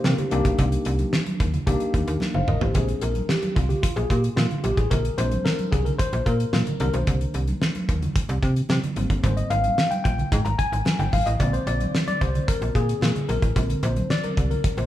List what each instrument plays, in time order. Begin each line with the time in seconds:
Already playing: tine electric piano A#3
0.04 fm bass C3, tine electric piano F4 A#4, snare, high conga
0.18 tine electric piano D4 G4, closed hi-hat, low conga
0.31 fm bass C2, tine electric piano A#3 D4 D#4 G4, closed hi-hat
0.45 fm bass B1, kick, closed hi-hat
0.58 fm bass C2, kick, closed hi-hat, muted conga, low conga
0.72 closed hi-hat, muted conga
0.85 fm bass C2, closed hi-hat
0.99 closed hi-hat, high conga
1.13 snare, muted conga
1.26 closed hi-hat, high conga
1.40 fm bass D#2, kick, closed hi-hat
1.53 closed hi-hat, low conga
1.67 fm bass C2, tine electric piano A#3 D4 D#4 G4, kick, closed hi-hat, muted conga
1.80 closed hi-hat, muted conga
1.94 fm bass D#2, kick, closed hi-hat
2.07 fm bass D#2, closed hi-hat
2.20 snare, muted conga, high conga
2.34 fm bass G1, tine electric piano C5 F5, muted conga, low conga
2.48 fm bass G#1, tine electric piano A#4 D#5, mid tom
2.61 fm bass A1, tine electric piano G4 C5, floor tom
2.74 fm bass A#1, tine electric piano G#3 C4 D4 G#4, kick, closed hi-hat, muted conga, low conga
2.88 closed hi-hat, muted conga
3.01 fm bass A#1, tine electric piano A#4, closed hi-hat
3.15 closed hi-hat, high conga
3.29 tine electric piano G4, snare, muted conga
3.42 closed hi-hat, muted conga, high conga
3.56 fm bass C2, tine electric piano F4, kick, closed hi-hat
3.69 tine electric piano G4, closed hi-hat, low conga
3.83 tine electric piano F4, kick, closed hi-hat, muted conga
3.96 fm bass A#1, tine electric piano G#4, closed hi-hat, muted conga
4.10 fm bass A#2, tine electric piano G4, kick, closed hi-hat
4.24 closed hi-hat
4.36 fm bass A#2, tine electric piano F4, snare, high conga
4.51 closed hi-hat, low conga
4.64 fm bass A#1, tine electric piano G4, closed hi-hat, high conga
4.77 fm bass A1, tine electric piano G#4, kick, closed hi-hat
4.91 fm bass A#1, tine electric piano A#4, kick, closed hi-hat, muted conga, low conga
5.05 closed hi-hat
5.18 fm bass A#1, tine electric piano G#3 C4 D4 C5, closed hi-hat
5.31 closed hi-hat, high conga
5.45 tine electric piano A#4, snare
5.59 closed hi-hat, muted conga, high conga
5.72 fm bass C2, tine electric piano G#4, kick, closed hi-hat
5.85 tine electric piano A#4, closed hi-hat, low conga
5.99 tine electric piano C5, kick, closed hi-hat, muted conga
6.13 fm bass A#1, closed hi-hat
6.26 fm bass A#2, tine electric piano A#4, kick, closed hi-hat
6.40 closed hi-hat
6.53 fm bass A#2, snare, muted conga, high conga
6.67 closed hi-hat, low conga
6.79 fm bass C2, tine electric piano D#3 A#3 D4 A#4, closed hi-hat, high conga
6.94 fm bass B1, tine electric piano C5, closed hi-hat
7.07 fm bass C2, kick, closed hi-hat, low conga
7.21 closed hi-hat
7.34 fm bass C2, closed hi-hat
7.48 closed hi-hat, high conga
7.62 snare
7.75 closed hi-hat, muted conga, high conga
7.89 fm bass D#2, kick, closed hi-hat
8.02 closed hi-hat, low conga
8.16 kick, closed hi-hat, muted conga
8.29 fm bass C2, closed hi-hat, muted conga
8.43 fm bass C3, kick, closed hi-hat
8.56 closed hi-hat
8.69 fm bass C3, snare, muted conga, high conga
8.83 closed hi-hat, low conga
8.96 fm bass G#1, tine electric piano G3 A#3 C4, closed hi-hat, high conga
9.10 fm bass G1, kick, closed hi-hat
9.23 fm bass G#1, tine electric piano C5, kick, closed hi-hat, muted conga, low conga
9.37 tine electric piano D#5, closed hi-hat
9.50 fm bass G#1, tine electric piano F5, closed hi-hat
9.64 closed hi-hat, high conga
9.78 snare
9.91 tine electric piano G5, closed hi-hat, high conga
10.04 fm bass A#1, tine electric piano G5, kick, closed hi-hat
10.18 closed hi-hat, low conga
10.32 fm bass G#2, kick, closed hi-hat, muted conga
10.45 fm bass G#1, tine electric piano A#5, closed hi-hat, muted conga
10.59 tine electric piano G#5, kick, closed hi-hat
10.72 fm bass G#1, closed hi-hat
10.85 snare, muted conga, high conga
10.99 fm bass G1, tine electric piano G5, closed hi-hat, muted conga, low conga
11.12 fm bass G#1, tine electric piano F5, kick, open hi-hat, high conga
11.26 fm bass A1, tine electric piano D#5, closed hi-hat
11.39 fm bass A#1, tine electric piano D3 G#3 C4 D5, kick, closed hi-hat, muted conga, low conga
11.53 tine electric piano C5, closed hi-hat, muted conga
11.67 fm bass A#1, tine electric piano D5, closed hi-hat
11.80 closed hi-hat, high conga
11.95 snare, muted conga
12.08 tine electric piano D5, closed hi-hat, muted conga, high conga
12.21 fm bass C2, tine electric piano C5, kick, closed hi-hat
12.35 closed hi-hat, low conga
12.48 tine electric piano A#4, kick, closed hi-hat
12.62 fm bass A#1, closed hi-hat
12.75 fm bass A#2, tine electric piano G#4, kick, closed hi-hat
12.89 closed hi-hat
13.01 fm bass A#2, snare, high conga
13.15 closed hi-hat, muted conga, low conga
13.28 fm bass A#1, tine electric piano A#4, closed hi-hat, high conga
13.42 fm bass A1, kick, closed hi-hat
13.56 fm bass A#1, tine electric piano D3 G#3 C4, kick, closed hi-hat, muted conga, low conga
13.70 closed hi-hat, muted conga
13.83 fm bass A#1, tine electric piano C5, closed hi-hat
13.96 closed hi-hat, high conga
14.10 tine electric piano D5, snare, muted conga
14.24 tine electric piano A#4, closed hi-hat, muted conga, high conga
14.37 fm bass C2, kick, closed hi-hat
14.51 tine electric piano A#4, closed hi-hat, low conga
14.64 kick, closed hi-hat, muted conga
14.77 fm bass A#1, tine electric piano C5, closed hi-hat, muted conga